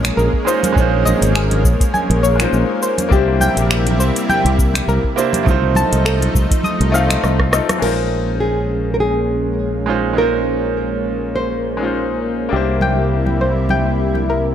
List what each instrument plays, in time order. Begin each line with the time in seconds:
Already playing: grand piano G#3 C#4 D#4 F4 C5, analog synth pad G#3 A#3 C#4
0.03 finger snap, closed hi-hat, high conga, shaker
0.17 fingered electric bass A#1, synth arpeggio sound A#4, shaker
0.33 kick
0.45 grand piano G#3 C#4 D#4 F4, synth arpeggio sound C5, shaker
0.49 grand piano C5
0.63 closed hi-hat, high conga, shaker
0.73 fingered electric bass A#1, grand piano G#3 C#4 D#4, kick
0.77 grand piano F4 C5, shaker
1.05 synth arpeggio sound D#5, high conga, shaker
1.21 fingered electric bass G#1, closed hi-hat, shaker
1.35 synth arpeggio sound G#4, finger snap, shaker
1.50 closed hi-hat, high conga
1.64 fingered electric bass A#1, kick, shaker
1.80 kick, closed hi-hat, shaker
1.94 synth arpeggio sound G#5, high conga, shaker
2.10 fingered electric bass A#1, closed hi-hat
2.23 synth arpeggio sound C#5, shaker
2.36 grand piano G#3 C#4 D#4
2.40 grand piano F4 C5, finger snap, closed hi-hat, high conga, shaker
2.53 fingered electric bass A#1, shaker
2.82 synth arpeggio sound C5, shaker
2.98 closed hi-hat, high conga, shaker
3.09 fingered electric bass C2, analog synth pad C3 G3 E4, grand piano A#3 D4 E4, synth arpeggio sound G4, kick, shaker
3.14 grand piano G4 C5
3.41 synth arpeggio sound G5, high conga, shaker
3.57 fingered electric bass A#1, closed hi-hat, shaker
3.71 finger snap, shaker
3.87 closed hi-hat, high conga
4.00 fingered electric bass C2, synth arpeggio sound C5, shaker
4.16 closed hi-hat, shaker
4.29 synth arpeggio sound G5, high conga, shaker
4.45 fingered electric bass C2, closed hi-hat
4.59 kick, shaker
4.74 finger snap, closed hi-hat, high conga, shaker
4.88 fingered electric bass C2, synth arpeggio sound A#4, shaker
5.04 kick
5.16 grand piano A#3 D4 E4 G4 C5, synth arpeggio sound C5, shaker
5.33 closed hi-hat, high conga, shaker
5.43 fingered electric bass C2, grand piano A3 C4 D#4, analog synth pad A3, kick, low conga
5.47 analog synth pad F3 D#4, grand piano F4 C5, shaker
5.75 synth arpeggio sound A5, high conga, shaker
5.92 fingered electric bass C2, closed hi-hat, shaker
6.05 synth arpeggio sound A4, finger snap, shaker
6.21 closed hi-hat, high conga
6.35 fingered electric bass C2, kick, shaker
6.51 kick, closed hi-hat, shaker
6.64 synth arpeggio sound D#6, high conga, shaker
6.80 fingered electric bass C2, closed hi-hat
6.92 grand piano A3 C4 D#4 F4 F5, synth arpeggio sound F5, shaker
7.09 finger snap, closed hi-hat, high conga, shaker
7.24 fingered electric bass C2, cross-stick, shaker
7.39 kick, cross-stick
7.51 grand piano A3 C4 D#4 F4 A4, synth arpeggio sound D#5, cross-stick, shaker
7.69 cross-stick, closed hi-hat, high conga, shaker
7.78 fingered electric bass A#1, grand piano G#3 C#4 D#4, nylon-string guitar A#4
7.82 analog synth pad G#3 A#3 C#4, grand piano F4 C5, crash
8.40 nylon-string guitar G#4
8.94 nylon-string guitar A#4
9.00 nylon-string guitar G#4
9.86 grand piano G#3 C#4 D#4 F4 C5
10.13 grand piano G#3 C#4 D#4
10.18 grand piano F4 C5, nylon-string guitar A#4
11.36 nylon-string guitar C5
11.77 grand piano G#3 C#4 D#4
11.83 grand piano F4 C5
12.49 fingered electric bass C2, analog synth pad C3 G3 E4, grand piano A#3 D4 E4, synth arpeggio sound G4
12.54 grand piano G4 C5
12.81 synth arpeggio sound G5, high conga
13.26 high conga
13.41 synth arpeggio sound C5
13.69 synth arpeggio sound G5, high conga
14.15 high conga
14.30 synth arpeggio sound A#4